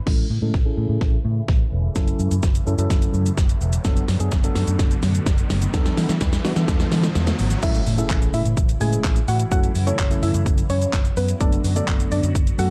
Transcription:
0.06 A1 C#3 E3 G#3 A3 C#4 E4 A4, kick, snare, crash, riser
0.30 A2
0.42 A2 G#3 C#4 E4 A4
0.54 A1, kick, snare
0.65 C#4 E4 G#4 A4
0.77 A2
0.89 A2
1.01 A1, kick, snare
1.25 A2
1.48 A1, kick, snare
1.72 E1
1.95 F#1 F#3 C#4 E4 A4, kick, snare, closed hi-hat, shaker
2.08 closed hi-hat, shaker
2.19 F#2, shaker
2.31 F#2, closed hi-hat, shaker
2.43 F#1, kick, snare, closed hi-hat, shaker
2.55 closed hi-hat, shaker
2.66 F#2 F#3 C#4 E4 A4, shaker
2.78 F#2 F#3 C#4 E4 A4, closed hi-hat, shaker
2.90 F#1, kick, snare, closed hi-hat, shaker
3.02 closed hi-hat, shaker
3.14 F#2, shaker
3.26 closed hi-hat, shaker
3.37 F#1, kick, snare, closed hi-hat, shaker
3.49 closed hi-hat, shaker
3.61 E1, shaker
3.73 closed hi-hat, shaker
3.84 F#1 D3 F#3 B3 D4 F#4 A4, kick, snare, closed hi-hat, shaker
3.97 closed hi-hat, shaker
4.08 F#2, snare, open hi-hat, shaker
4.20 F#2 F#3 B3 D4 G#4, closed hi-hat, shaker
4.32 F#1, kick, snare, closed hi-hat, shaker
4.44 F#3 B3 D4 A4, closed hi-hat, shaker
4.55 F#2, snare, open hi-hat, shaker
4.67 F#2, closed hi-hat, shaker
4.79 F#1, kick, snare, closed hi-hat, shaker
4.91 closed hi-hat, shaker
5.03 F#2, snare, open hi-hat, shaker
5.15 closed hi-hat, shaker
5.26 F#1, kick, snare, closed hi-hat, shaker
5.38 closed hi-hat, shaker
5.50 F#1, snare, open hi-hat, shaker
5.62 closed hi-hat, shaker
5.74 E2 E3 B3 D4 E4 A4, kick, snare, closed hi-hat, shaker
5.86 snare, closed hi-hat, shaker
5.97 E3, snare, open hi-hat, shaker
6.09 E3, snare, closed hi-hat, shaker
6.21 E2, kick, snare, closed hi-hat, shaker
6.33 snare, closed hi-hat, shaker
6.44 E3 B3 D4 F#4, snare, open hi-hat, shaker
6.56 E3 B3 D4 A4, snare, closed hi-hat, shaker
6.68 E2, kick, snare, closed hi-hat, shaker
6.80 snare, closed hi-hat, shaker
6.92 E3, snare, open hi-hat, shaker
7.04 snare, closed hi-hat, shaker
7.15 E2, snare, closed hi-hat, shaker
7.27 snare, closed hi-hat, shaker
7.39 G#1, open hi-hat, shaker
7.51 closed hi-hat, shaker
7.62 A1 C#3 E3 G#3 A3 C#4 E4 A4 E5, kick, closed hi-hat, crash, impact, shaker
7.75 closed hi-hat, shaker
7.86 A2, open hi-hat, shaker
7.98 A3 C#4 E4 G#4 A4 E5, closed hi-hat, shaker
8.10 A1, kick, snare, clap, closed hi-hat, shaker
8.22 closed hi-hat, shaker
8.34 A2 E4 E5, open hi-hat, shaker
8.45 A2, closed hi-hat, shaker
8.57 A1, kick, closed hi-hat, shaker
8.69 closed hi-hat, shaker
8.80 A2 G#3 A3 C#4 E4 G#4 G#5, open hi-hat, shaker
8.93 closed hi-hat, shaker
9.04 A1, kick, snare, clap, closed hi-hat, shaker
9.16 closed hi-hat, shaker
9.28 A2 F#4 F#5, open hi-hat, shaker
9.40 closed hi-hat, shaker
9.51 F#1 F#3 A3 C#4 E4 F#4 A4 F#5, kick, closed hi-hat, shaker
9.64 closed hi-hat, shaker
9.75 F#2, open hi-hat, shaker
9.87 F#3 A3 C#4 E4 A4 C#5, closed hi-hat, shaker
9.99 F#1, kick, snare, clap, closed hi-hat, shaker
10.10 F#3 A3 C#4 E4 A4, closed hi-hat, shaker
10.23 F#2 E4 E5, open hi-hat, shaker
10.34 F#2, closed hi-hat, shaker
10.46 F#1, kick, closed hi-hat, shaker
10.58 closed hi-hat, shaker
10.70 F#2 C#4 C#5, open hi-hat, shaker
10.82 closed hi-hat, shaker
10.93 F#1, kick, snare, clap, closed hi-hat, shaker
11.05 closed hi-hat, shaker
11.17 F#2 B3 B4, open hi-hat, shaker
11.28 closed hi-hat, shaker
11.40 F#1 D3 F#3 A3 B3 D4 F#4 A4 D5, kick, closed hi-hat, shaker
11.52 closed hi-hat, shaker
11.64 F#2, open hi-hat, shaker
11.76 F#3 A3 B3 D4 A4 D5, closed hi-hat, shaker
11.88 F#1, kick, snare, clap, closed hi-hat, shaker
12.00 closed hi-hat, shaker
12.12 F#2 D4 D5, open hi-hat, shaker
12.23 F#2, closed hi-hat, shaker
12.35 F#1, kick, closed hi-hat, shaker
12.47 closed hi-hat, shaker
12.58 F#2 F#3 A3 B3 D4 F#4 A4 F#5, open hi-hat, shaker

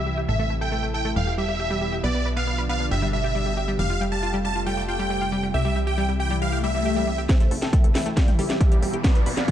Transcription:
Already playing: C2 C3 E3 G3 E4 G4 E5
0.07 G3
0.17 G4
0.28 A1 A3 E4 A4 E5
0.39 A3
0.50 A3
0.61 A4 G5
0.72 A3
0.83 A3
0.94 A4 G5
1.05 A3
1.16 E1 B2 G3 E4 G4 F5
1.27 G4
1.38 G3 E5
1.49 G3
1.60 G4
1.71 G3
1.82 G3
1.93 G4
2.03 B1 D3 F3 B3 D4 F4 D5
2.15 B3
2.26 B4
2.37 B3 F5
2.47 B3
2.58 B4
2.69 B3 F5
2.80 B3
2.91 G1 B2 G3 G4 E5
3.02 G3
3.13 G3 E5
3.24 G4
3.35 G3
3.46 G3
3.57 G4
3.68 G3
3.79 F1 C3 G3 A3 F4 G4 F5
3.90 F4
4.01 G3
4.12 G3 A5
4.23 F4
4.34 G3
4.45 G3 A5
4.56 F4
4.66 G3 G5
4.77 G3
4.88 F4 G5
4.99 G3
5.10 G3
5.21 F4
5.32 G3
5.43 G3
5.54 C2 E3 E4 G4 E5
5.65 G3
5.76 G3
5.87 G4 G5
5.98 G3
6.09 G3
6.20 G4 G5
6.31 G3
6.42 G3 F5, swell
6.53 G4
6.64 G3 E5
6.74 G3
6.85 G4
6.96 G3
7.07 G3
7.18 G4
7.29 C3 E3 A3 E4 A4 C5 E5, kick, snare, closed hi-hat, riser
7.40 A1 A3, closed hi-hat
7.51 A1 A3, open hi-hat
7.62 A1 A4 E5 G5, snare, closed hi-hat
7.73 A3, kick, closed hi-hat
7.84 A1 A3, closed hi-hat
7.95 A1 A4 E5 G5, snare, open hi-hat
8.06 A1 A3, closed hi-hat
8.17 B2 G3 G4 D5 F5, kick, snare, closed hi-hat
8.28 E1 G4, closed hi-hat, mid tom
8.39 E1 G3 G4 E5, open hi-hat
8.50 E1 G3, snare, closed hi-hat
8.61 G4, kick, closed hi-hat
8.71 E1 G3, closed hi-hat
8.82 E1 G3, open hi-hat
8.93 E1 G4, closed hi-hat
9.04 D3 F3 B3 D4 F4 B4 D5, kick, snare, closed hi-hat
9.15 B1 B3, closed hi-hat
9.26 B1 B4, open hi-hat
9.37 B1 B3 D5 F5, snare, closed hi-hat
9.48 kick, closed hi-hat

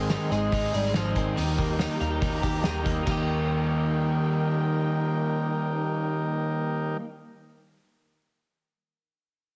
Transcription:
Already playing: G#1 G#2 D#3 G#3 C4 D#4 G#4 D#5 C6
0.09 D#3 G#3 C4 D#4, snare, hi-hat pedal, open hi-hat, tambourine
0.30 G#1 G#3 C4 D#4 G#4, hi-hat pedal, open hi-hat, tambourine
0.51 G#1 G#2 D#3 G#3 C4 D#4, kick, hi-hat pedal, open hi-hat
0.73 G#1 G3 G#3 C4 D#4 G#4, hi-hat pedal, open hi-hat, tambourine
0.93 G#1 D#3 F3 G#3 C4 D#4, snare, hi-hat pedal, open hi-hat, tambourine
1.15 G#1 D#3 G#3 C4 D#4, kick, hi-hat pedal, open hi-hat
1.35 D#2 D#3 G3 A#3 D#4 G4 A#5, hi-hat pedal, open hi-hat, tambourine
1.57 D#2 G3 A#3 D#4, kick, hi-hat pedal, open hi-hat, tambourine
1.78 D#3 G3 A#3 D#4, snare, hi-hat pedal, open hi-hat, tambourine
1.99 D#2 G3 A#3 D#4 F4, hi-hat pedal, open hi-hat, tambourine
2.11 G4
2.22 D#2 D#3 G3 A#3 D#4, kick, hi-hat pedal, open hi-hat, tambourine
2.41 D#2 G3 A#3 D#4 G4 A#5, kick, snare, hi-hat pedal, open hi-hat, tambourine
2.63 D#2 D#3 G3 A#3 D#4 G5, snare, hi-hat pedal, open hi-hat, tambourine
2.79 G5
2.84 D#2 G3 A#3 D#4, kick, hi-hat pedal, open hi-hat
2.93 D#5
3.01 D#3
3.06 D#2 D#3 G3 A#3 D#4 G4 A#4 G5, kick, crash, tambourine
3.10 A#3 G4
3.15 D#4

